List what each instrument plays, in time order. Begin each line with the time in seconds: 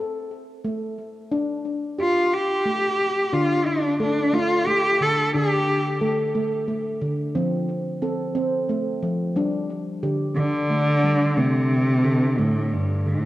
Already playing: handpan A4
0.64 handpan A3
1.31 handpan D4
1.98 cello F4, handpan G4
2.33 cello G4
2.66 handpan A3
3.33 handpan D3 D4, cello F4
3.66 cello D4
4.00 handpan A3 A4, cello D4
4.33 handpan A3, cello F4
4.67 handpan A3, cello G4
5.01 handpan D3, cello A4
5.34 handpan D3 D4, cello G4
6.01 handpan A3 A4
6.35 handpan A3
6.68 handpan A3
7.02 handpan D3
7.35 handpan F3 C4
8.02 handpan C4 A4
8.35 handpan C4
8.69 handpan A3
9.03 handpan F3
9.36 handpan G3 D4
10.03 handpan D3 G4
10.36 cello D3, handpan D3
10.70 handpan A3
11.04 handpan G3
11.37 cello C3, handpan D3 A3
12.05 handpan D3 A4
12.38 cello A2, handpan D3 A3
12.73 cello G2
13.06 cello A2, handpan D3